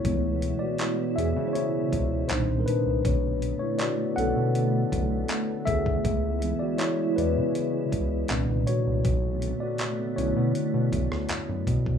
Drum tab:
HH |x-x-x-x-x-x-x-x-|x-x-x-x-x-x-x-x-|x-x-x-x-x-x-x-x-|x-x-x-x-x-x-x-x-|
CP |----x-------x---|----x-------x---|----x-------x---|----x-------x---|
SD |----------------|----------------|----------------|-----------r----|
BD |o---------o-----|o---------o---oo|o---------o-----|o---------o---oo|